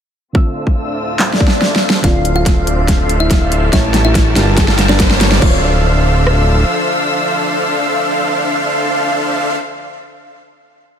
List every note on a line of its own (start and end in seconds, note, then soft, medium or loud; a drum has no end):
0.33 2.02 D2 medium
0.33 2.02 A2 medium
0.33 1.99 D3 medium
0.33 1.99 A3 medium
0.33 2.00 C4 medium
0.33 2.02 C4 medium
0.33 2.00 D4 medium
0.33 2.02 F4 medium
0.33 2.00 F4 medium
0.33 2.00 A4 medium
0.33 2.00 C5 medium
0.33 2.00 E5 medium
0.33 2.00 F5 medium
0.33 2.02 E6 medium
0.33 2.01 E6 loud
0.33 kick loud
0.67 kick medium
1.19 snare medium
1.19 clap medium
1.19 swell medium
1.33 snare medium
1.40 kick loud
1.48 snare medium
1.62 snare medium
1.76 snare medium
1.90 snare loud
2.02 3.71 D1 medium
2.02 3.68 D3 medium
2.02 3.71 D3 medium
2.02 3.71 F3 medium
2.02 3.71 A3 medium
2.02 3.68 C4 medium
2.02 3.71 C4 medium
2.02 2.26 F4 medium
2.02 3.69 F4 medium
2.02 3.70 D5 loud
2.02 3.69 F5 loud
2.02 2.26 F5 medium
2.02 kick medium
2.02 snare soft
2.02 closed hi-hat medium
2.02 riser medium
2.25 closed hi-hat medium
2.36 2.65 F4 medium
2.36 2.65 F5 medium
2.46 kick loud
2.46 snare medium
2.46 closed hi-hat medium
2.67 closed hi-hat medium
2.88 kick medium
2.88 snare medium
2.88 closed hi-hat medium
3.09 closed hi-hat medium
3.20 3.42 E4 medium
3.20 3.42 E5 medium
3.31 kick medium
3.31 snare medium
3.31 closed hi-hat medium
3.52 closed hi-hat medium
3.72 4.34 A1 medium
3.72 4.32 A3 medium
3.72 4.36 C#4 medium
3.72 4.32 E4 medium
3.72 3.95 E4 medium
3.72 4.32 G4 medium
3.72 4.36 G4 medium
3.72 4.32 G4 medium
3.72 4.32 A#4 medium
3.72 4.32 C#5 medium
3.72 4.33 C#5 medium
3.72 3.95 E5 loud
3.72 4.32 A5 medium
3.72 kick medium
3.72 snare medium
3.72 closed hi-hat medium
3.94 snare medium
3.94 closed hi-hat medium
4.05 4.34 E4 medium
4.05 4.34 E5 loud
4.15 kick loud
4.15 snare medium
4.15 closed hi-hat medium
4.34 5.40 G1 loud
4.34 5.37 G3 loud
4.34 5.38 G3 medium
4.34 5.41 G3 medium
4.34 5.41 A#3 medium
4.34 5.37 D4 medium
4.34 5.41 D4 medium
4.34 5.38 F4 medium
4.34 5.41 F4 medium
4.34 5.38 G4 medium
4.34 5.38 A#4 medium
4.34 5.38 F5 medium
4.34 5.41 A5 medium
4.34 5.38 A5 loud
4.34 5.38 A5 medium
4.34 snare medium
4.34 closed hi-hat medium
4.38 5.39 A#4 loud
4.57 kick medium
4.57 snare medium
4.57 closed hi-hat medium
4.68 snare medium
4.79 snare medium
4.79 closed hi-hat medium
4.89 5.11 D4 medium
4.89 5.11 D5 medium
4.89 snare medium
5.00 kick medium
5.00 snare loud
5.00 closed hi-hat medium
5.10 snare medium
5.21 snare loud
5.21 closed hi-hat medium
5.32 snare loud
5.39 6.65 D1 loud
5.39 9.72 D3 medium
5.39 9.56 D3 medium
5.39 9.56 F3 medium
5.39 9.74 C4 medium
5.39 9.56 D4 medium
5.39 9.56 A4 medium
5.39 9.56 C5 medium
5.39 9.76 D5 medium
5.39 9.56 E5 medium
5.39 9.56 F5 loud
5.39 9.56 F5 medium
5.39 9.56 E6 loud
5.39 kick loud
5.39 crash medium
5.44 9.77 F4 medium
5.44 9.78 D5 loud
6.27 cross-stick medium